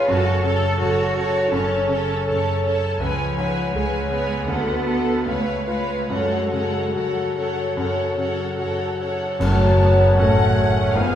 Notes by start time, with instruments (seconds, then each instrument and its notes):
Already playing: grand piano G#2 G#3 C#4 B4
0.08 double bass section F#1, grand piano F#2, cello section F#4, viola section A4, french horn section A4 C#5, violin section C#5 A5
0.44 grand piano C#3, cello section A4, viola section A4, violin section C#5 A5
0.78 double bass section F#1, cello section F#4, grand piano A4, viola section A4, violin section C#5 A5
1.16 grand piano C#4, viola section A4, violin section C#5 A5
1.52 double bass section F#1, grand piano F#2, cello section C#4, viola section A4, violin section C#5 A5
1.88 grand piano C#3, viola section A4, violin section C#5
1.93 violin section A5
2.25 double bass section F#1, grand piano A4, viola section A4, violin section C#5 A5
2.63 grand piano C#4, viola section A4, violin section C#5 A5
3.00 grand piano C#2, double bass section C#2, cello section F3, viola section B4, french horn section B4, violin section C#5 G#5
3.37 grand piano G#2, viola section B4, violin section C#5 G#5
3.73 double bass section C#2, cello section G#3, grand piano G#4, viola section B4, violin section C#5 G#5
4.10 grand piano B3, viola section B4, violin section C#5 G#5
4.47 grand piano D2, double bass section D2, cello section B3, french horn section F#4 A4, viola section A4, violin section A4 F#5
4.86 grand piano F#4 A4, viola section A4, violin section A4 F#5
5.24 double bass section C#2, grand piano C#2, cello section A3, french horn section B4 F5, viola section B4, violin section F5
5.28 violin section C#5
5.66 cello section G#3, grand piano F4 B4, viola section B4, violin section C#5 F5
6.07 double bass section F#2, grand piano F#2, cello section G#3, french horn section A4, violin section F#5
6.11 french horn section F#4, viola section A4, violin section C#5
6.51 grand piano C#3, viola section A4, violin section C#5 F#5
6.95 double bass section F#2, cello section F#3, grand piano F#4, viola section A4, violin section C#5 F#5
7.36 grand piano C#4, viola section A4, violin section C#5 F#5
7.76 grand piano F#2, double bass section F#2, viola section A4, violin section C#5 F#5
8.16 grand piano C#3, viola section A4, violin section C#5 F#5
8.57 double bass section F#2, grand piano F#4, violin section C#5 F#5
8.62 viola section A4
8.99 grand piano C#4, viola section A4, violin section C#5 F#5
9.38 grand piano F#1 F#2, double bass section F#1, cello section F#2, timpani F#2, bassoon F#3, french horn section F#3, clarinet C#5, violin section C#5 A5, cor anglais F#5, flute A5, concert bass drum, crash
9.42 viola section A3
9.81 viola section B3
10.17 double bass section A1, cello section A2, french horn section A3, grand piano C#4 F#4 A4, viola section C#4, violin section F#5
10.58 viola section C#4
10.93 double bass section G#1, grand piano G#1 G#2, cello section G#2, bassoon F3, french horn section B3, violin section F5 G#5, clarinet F5, cor anglais G#5, flute B5
10.97 viola section B3